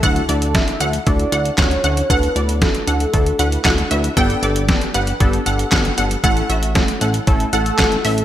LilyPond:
<<
  \new Staff \with { instrumentName = "Synth pluck" } { \time 4/4 \key d \major \tempo 4 = 116 fis''8 d''8. r16 fis''16 r8. fis''8 fis''16 r16 fis''16 r16 | fis''8 d''8. r16 fis''16 r8. fis''8 fis''16 r16 e''16 r16 | g''8 d''8. r16 fis''16 r8. fis''8 fis''16 r16 fis''16 r16 | fis''8 e''8. r16 fis''16 r8. fis''8 fis''16 r16 e''16 r16 | }
  \new Staff \with { instrumentName = "Soft synth lead" } { \time 4/4 \key d \major a'4 e''4 d''4 cis''4 | b'4 a'2~ a'8 r8 | r1 | r2 r8 a'4. | }
  \new Staff \with { instrumentName = "Synth keys" } { \time 4/4 \key d \major <d' e' fis' a'>8 <d' e' fis' a'>8 <d' e' fis' a'>8 <d' e' fis' a'>8 <d' e' fis' a'>8 <d' e' fis' a'>8 <d' e' fis' a'>8 <d' e' fis' a'>8 | <d' e' fis' a'>8 <d' e' fis' a'>8 <d' e' fis' a'>8 <d' e' fis' a'>8 <d' e' fis' a'>8 <d' e' fis' b'>8 <d' e' fis' a'>8 <d' e' fis' b'>8 | <b d' g' a'>8 <b d' g' a'>8 <b d' g' a'>8 <b d' g' b'>8 <b d' g' a'>8 <b d' g' a'>8 <b d' g' a'>8 <b d' g' a'>8 | <a cis' e' a'>8 <a cis' e' fis'>8 <a cis' e' a'>8 <a cis' e' a'>8 <a cis' e' a'>8 <a cis' e' a'>8 <a cis' e' a'>8 <a cis' e' a'>8 | }
  \new Staff \with { instrumentName = "Analog synth bass" } { \clef bass \time 4/4 \key d \major d,8 d,8. r16 d,8 d,8 d,8 d,8 d,8 | d,8 d,8. r16 d,8 d,8 d,8 d,8 d,8 | g,,8 g,,8. r16 g,,8 g,,8 g,,8 g,,8 g,,8 | a,,8 a,,8. r16 a,,8 a,,8 a,,8 a,,8 a,,8 | }
  \new DrumStaff \with { instrumentName = "Drums" } \drummode { \time 4/4 <hh bd>16 hh16 hh16 hh16 <hh bd sn>16 hh16 hh16 hh16 <hh bd>16 hh16 hh16 hh16 <hc hh bd sn>16 hh16 hh16 hh16 | <hh bd>16 hh16 hh16 hh16 <hh bd sn>16 hh16 hh16 hh16 <hh bd>16 hh16 hh16 hh16 <hc hh bd sn>16 hh16 hh16 hh16 | <hh bd>16 hh16 hh16 hh16 <hh bd sn>16 hh16 hh16 hh16 <hh bd>16 hh16 hh16 hh16 <hc hh bd sn>16 hh16 hh16 hh16 | <hh bd>16 hh16 hh16 hh16 <hh bd sn>16 hh16 hh16 hh16 <hh bd>16 hh16 hh16 hh16 <hc hh bd sn>16 hh16 hho16 hh16 | }
>>